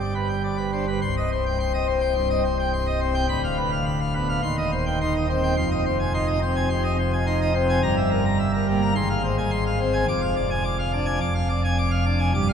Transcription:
pipe organ
Already playing: G1 G2
0.01 D5
0.15 B4
0.29 G5
0.44 D5
0.57 B4
0.73 D4 C5
0.88 B4
1.02 C1 C2 C6
1.17 D#5
1.32 C5
1.46 G5
1.60 C6
1.74 D#5
1.87 C4 C5
2.01 G5
2.15 G2 C6
2.30 D#5
2.44 C5
2.59 G5
2.73 C6
2.87 D#5
3.01 C4 C5
3.14 G5
3.29 D1 D2 B5
3.44 F5
3.57 B4
3.72 F5
3.86 B5
4.01 F5
4.15 B3 B4
4.29 F5
4.43 D#1 D#2 C6
4.58 D#5
4.72 C5
4.86 G5
5.01 D#4 C6
5.16 D#5
5.30 C4 C5
5.43 G5
5.56 F1 F2 C6
5.71 D#5
5.86 C5
6.00 G#5
6.14 D#4 C6
6.27 D#5
6.42 C4 C5
6.56 G#5
6.70 C3 C6
6.84 D#5
6.99 C5
7.13 G#5
7.26 D#4 C6
7.41 D#5
7.55 C4 C5
7.69 G#5
7.83 G1 G2 A#5
7.97 E5
8.11 A#4
8.25 A#5
8.39 E5
8.54 A#4
8.68 G3 A#3
8.82 A#5
8.95 G#1 G#2 C6
9.10 F5
9.24 C5
9.38 G#5
9.51 C6
9.66 F5
9.80 C4 C5
9.93 G#5
10.08 F1 F2 D6
10.22 F5
10.36 D5
10.50 G#5
10.64 D6
10.79 F5
10.93 D4 D5
11.05 G#5
11.20 F1 F2 D6
11.35 F5
11.49 D5
11.64 G#5
11.78 D6
11.91 F5
12.06 D4 D5
12.19 G#5
12.34 G1 G2 D6
12.49 F5

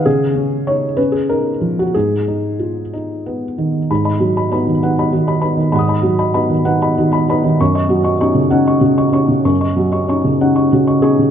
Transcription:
felt piano
0.05 C#3 G#4
0.35 C#4
0.67 D#4 C#5
0.97 C#4 B4
1.12 G#4
1.29 D#4 A#4
1.61 F3
1.79 F#4
1.94 G#2 G#4
2.28 D#4
2.59 F4
2.93 D#4
3.26 B3
3.58 D#3
3.91 G#2 B5
4.05 D#5 B5
4.20 F#3 F#4
4.37 D#5 B5
4.52 B3 D#4 D#5 B5
4.67 D#3
4.83 B3 D#4 F#5
4.99 D#5 B5
5.12 D#3 F#4
5.27 D#5 B5
5.41 B3 D#4 D#5 B5
5.57 D#3
5.72 G#2 F#5 B5
5.79 D#6
5.88 D#5 B5
6.02 F#3 F#4
6.19 D#5 B5
6.34 B3 D#4 D#5 B5
6.50 D#3
6.65 B3 D#4 F#5
6.82 D#5 B5
6.98 D#3 F#4
7.12 D#5 B5
7.29 B3 D#4 D#5 B5
7.44 D#3
7.60 F#2 C#6
7.75 D#5 C#6
7.89 F#3 F#4
8.04 D#5 C#6
8.20 C#4 D#4 D#5 C#6
8.34 C#3
8.50 C#4 D#4 F#5
8.67 D#5 C#6
8.81 C#3 F#4
8.98 D#5 C#6
9.12 C#4 D#4 D#5 C#6
9.28 C#3
9.45 F#2 C#6
9.61 D#5 C#6
9.76 F#3 F#4
9.92 D#5 C#6
10.08 C#4 D#4 D#5 C#6
10.24 C#3
10.41 C#4 D#4 F#5
10.56 D#5 C#6
10.72 C#3 F#4
10.87 D#5 C#6
11.02 C#4 D#4 G#4 D#5 C#6
11.19 C#3

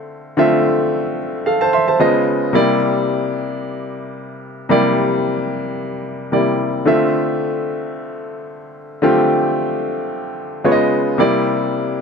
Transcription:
grand piano
Already playing: D3 A3 C4 F4 E5
0.37 D3 A3 C4 F4 E5
1.46 A4 F5
1.61 C5 A5
1.73 E5 C6
1.88 C5 A5
1.99 C#3 G#3 B3 F4 D#5
2.53 C3 G3 A#3 E4 D5
4.69 C3 G3 A#3 E4 D5
6.32 C3 G3 A#3 E4 D5
6.85 D3 A3 C4 F4 E5
9.02 D3 A3 C4 F4 G4
10.64 C#3 G#3 B3 F4 C#5
10.72 D#5
11.18 C3 G3 A#3 E4 D5

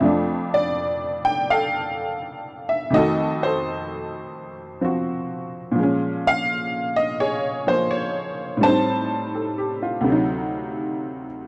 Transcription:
honky-tonk piano
0.01 F2 F3 A3
0.05 D4
0.54 D5
1.25 G5
1.50 A4 F5
2.69 E5
2.90 F2 D#3 A3 D#5
2.95 F#4 A4
3.43 A4 C5
4.81 F3 C4 F#4
5.72 A#2 F3
5.79 G#3
5.83 C#4
6.27 F5
6.96 D#5
7.20 G#4 C#5
7.67 F3 A#3 C5
7.91 C#5
8.57 A2 G3
8.63 C4 C5 A5
8.68 D#4
9.35 A4
9.58 G4
9.83 F4
10.01 D2 C3
10.08 F#3 D#4

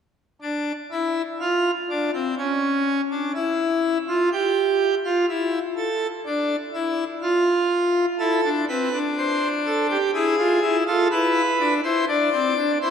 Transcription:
pipe organ
0.42 D4
0.92 E4
1.41 F4
1.90 D4
2.14 C4
2.38 C#4
3.11 D4
3.35 E4
4.08 F4
4.32 G4
5.05 F4
5.29 E4
5.77 A4
6.26 D4
6.74 E4
7.22 F4
8.19 E4 A4
8.44 D4
8.69 C4 B4
8.93 D4
9.18 C5
9.66 A4
9.90 G4
10.14 E4 G#4
10.39 F4
10.62 E4
10.87 F4 A4
11.11 E4 B4
11.60 D4
11.84 E4 C5
12.08 D4 D5
12.33 C4
12.57 D4
12.82 E4 C5

